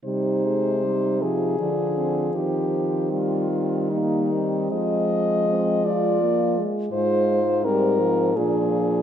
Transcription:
X:1
M:3/4
L:1/8
Q:1/4=80
K:Cm
V:1 name="French horn"
c3 A3 | G2 F2 E2 | e3 d2 z | c2 B2 A2 |]
V:2 name="French horn"
E2 E2 D C | C4 B, C- | C2 C F2 z | F2 C2 D2 |]
V:3 name="French horn" clef=bass
G, A, G, F, F,2- | F,2 G, G,3 | A,4 B, A, | A, z G, F, F,2 |]
V:4 name="French horn" clef=bass
C,4 D,2 | E,6 | F,4- F, z | A,,4 B,,2 |]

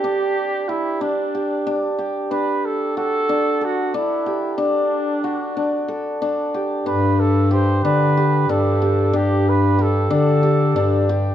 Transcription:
X:1
M:7/8
L:1/8
Q:1/4=92
K:G
V:1 name="Flugelhorn"
G2 E D3 z | B A A2 F E2 | D4 z3 | B A c B2 A2 |
G B A A3 z |]
V:2 name="Hammered dulcimer"
D2 G D G D G | D2 F D A D G | D2 F D A D G | D2 G D G D G |
D2 G D G D G |]
V:3 name="Bass clarinet" clef=bass
z6 z | z6 z | z6 z | G,,3 D,2 G,,2 |
G,,3 D,2 G,,2 |]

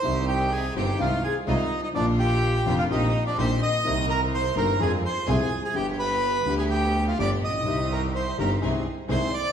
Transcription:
X:1
M:4/4
L:1/16
Q:1/4=126
K:Cm
V:1 name="Bandoneon"
[cc']2 [Gg]2 [Aa]2 [Gg]2 [Ff]2 [Aa]2 [Ee]3 [Ee] | [Dd]2 [Gg]4- [Gg] [Ff] [Ee]3 [Dd] [cc']2 [ee']2- | [ee']2 [Bb]2 [cc']2 [Bb]2 [Aa]2 [cc']2 [Aa]3 [Aa] | [Gg]2 [=B=b]4- [Bb] [Aa] [Gg]3 [Ff] [dd']2 [ee']2- |
[ee']2 [Bb]2 [cc']2 [Bb]2 z4 [cc']2 [dd']2 |]
V:2 name="Violin section"
c2 G2 A2 G2 F2 A2 E3 E | D2 G4- G F E3 D c2 e2- | e2 B2 c2 B2 A2 c2 A3 A | G2 =B4- B A G3 F d2 e2- |
e2 B2 c2 B2 z4 c2 d2 |]
V:3 name="String section"
[CEG]6 [CEG]2 [A,EF]2 z2 [A,EF]2 z2 | [B,DF]6 [B,DF]2 [CEG]2 z2 [CEG]2 z2 | [CEB]6 [CEB]2 [CFA]2 z2 [CFA]2 z2 | [=B,DG]6 [B,DG]6 [B,DG]2 z2 |
[CEG]6 [CEG]2 [CEA]2 z2 [CEA]2 z2 |]
V:4 name="Grand piano" clef=bass
[C,,C,E,G,CG]6 [G,,,G,,E,G,CG]2 [C,,C,E,A,CF]2 z2 [C,,C,E,A,CF]2 z2 | [B,,,B,,D,F,B,F]6 [F,,,F,,D,F,B,F]2 [B,,,B,,E,B,CG]2 z2 [B,,,B,,E,B,CG]2 z2 | [C,,C,E,B,CG]6 [G,,,G,,E,B,CG]2 [F,,F,A,CA]2 z2 [C,,C,F,A,CA]2 z2 | [G,,,G,,D,G,=B,G]6 [D,,D,G,B,G]6 [G,,,G,,D,G,B,G]2 z/2 =A,,,/2 _B,,,/2 =B,,,/2 |
[C,,C,E,G,CG]6 [G,,,G,,E,G,CG]2 [C,,C,E,A,CA]2 z2 [C,,C,E,A,CA]2 z2 |]
V:5 name="Double bass" clef=bass
C,,6 G,,,2 C,,2 z2 C,,2 z2 | B,,,6 F,,,2 B,,,2 z2 B,,,2 z2 | C,,6 G,,,2 F,,2 z2 C,,2 z2 | G,,,6 D,,6 G,,,2 B,,,2 |
C,,6 G,,,2 C,,2 z2 C,,2 z2 |]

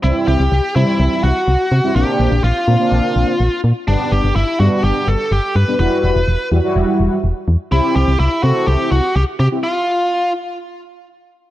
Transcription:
X:1
M:4/4
L:1/16
Q:1/4=125
K:Clyd
V:1 name="Lead electric guitar"
E2 G4 E4 F6 | G4 =F8- F2 z2 | D2 G2 E2 F2 G2 A2 G2 B2 | B6 z8 z2 |
E2 G2 E2 F2 G2 F2 G2 G2 | =F6 z8 z2 |]
V:2 name="Analog polysynth"
[G,CE]3 z3 [G,CE]4 z4 z [G,CE] | [_B,CD]3 z3 [B,CD] [B,CD]4 z4 z | [G,B,D]3 z3 [G,B,D]4 z4 z [G,B,D] | [G,EF]3 z3 [G,EF] [G,EF]4 z4 z |
[CEG]3 z3 [CEA]4 z4 z [CEG] | z16 |]
V:3 name="FM bass" clef=bass
C,, z C,, C,, C,, z C, z C,, z C,, z C,, z C, z | _B,,, z B,,, B,,, B,,, z _B,, z B,,, z B,,, z B,,, z B,, z | G,,, z G,,, G,,, G,,, z G,, z G,,, z G,,, z G,,, z G,, z | E,,, z E,,, E,,, E,,, z E,, z E,,, z E,,, z E,,, z E,, z |
C,, z C,, C,, C,, z C, z C,, z C,, z C,, z C, z | z16 |]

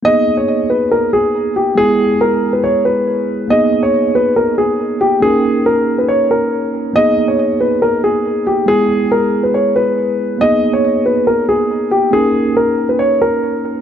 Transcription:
X:1
M:4/4
L:1/16
Q:1/4=139
K:G#m
V:1 name="Grand piano"
d3 c3 B2 A2 G4 =G2 | G4 A3 B c2 B6 | d3 c3 B2 A2 G4 =G2 | G4 A3 B c2 A6 |
d3 c3 B2 A2 G4 =G2 | G4 A3 B c2 B6 | d3 c3 B2 A2 G4 =G2 | G4 A3 B c2 A6 |]
V:2 name="Tine electric piano"
[A,B,DG]16 | [G,B,EG]16 | [A,B,DG]16 | [A,CDA]16 |
[A,B,DG]16 | [G,B,EG]16 | [A,B,DG]16 | [A,CDA]16 |]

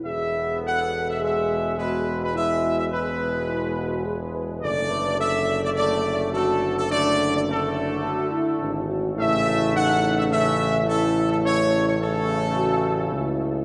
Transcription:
X:1
M:4/4
L:1/16
Q:1/4=105
K:E
V:1 name="Trumpet section"
e4 f3 e e4 B3 B | e3 e B8- B2 z2 | =d4 e3 d d4 A3 A | =d3 d A8- A2 z2 |
e4 f3 e e4 A3 A | c3 c A8- A2 z2 |]
V:2 name="French horn section"
G4 A4 G4 F4 | E4 G2 F2 E2 F2 G2 B2 | A2 B2 A8 F4 | =D4 C2 D2 F2 E2 D2 F2 |
E4 D4 C4 E4- | E4 D2 C2 F4 E4 |]
V:3 name="Trombone section" clef=bass
[B,,B,]8 [B,,G,]4 [B,,G,]4 | [B,,G,]4 [B,,G,]12 | [=D,A,]8 [D,A,]4 [D,A,]4 | [=D,A,]4 [D,A,]12 |
[C,A,]8 [C,A,]4 [C,A,]4 | [C,A,]4 [C,A,]12 |]
V:4 name="Tuba" clef=bass
E,,,16- | E,,,16 | F,,,16- | F,,,8- F,,,2 z2 G,,,4 |
A,,,16- | A,,,12 C,,4 |]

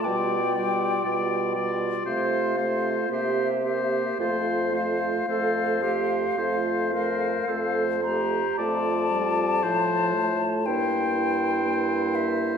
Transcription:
X:1
M:4/4
L:1/8
Q:1/4=57
K:F
V:1 name="Flute"
g3 z f2 e2 | f6- f b | a4 g3 e |]
V:2 name="Oboe"
d d d d c c c c | c c c c c c c c | d2 c2 c4 |]
V:3 name="Clarinet"
F F F F F F G G | F F A G F B A G | F4 E E3 |]
V:4 name="French horn"
G, G, G, G, A, A, B, B, | A, A, A, A, A, A, A, A, | A, G, F, A, B,2 B,2 |]
V:5 name="Bassoon" clef=bass
=B,,2 B,,2 C,2 C,2 | F,,2 F,,2 F,,2 F,,2 | F,,2 A,,2 G,,4 |]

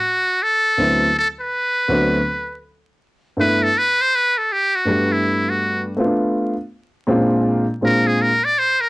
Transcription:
X:1
M:4/4
L:1/16
Q:"Swing 16ths" 1/4=81
K:G
V:1 name="Muted trumpet"
F2 A4 A B6- B z2 | z2 B A B c B A G F2 E2 F2 z | z8 z2 _B _A B d c B |]
V:2 name="Grand piano"
z4 [D,,F,A,B,CE]2 z4 [D,,F,A,B,CD]2 z4 | z2 [G,,A,B,DE]2 z6 [G,,G,A,B,D]6 | [A,B,CD=F]2 z4 [_B,,_A,C^CDF]2 z2 [B,,A,=CDF]2 z4 |]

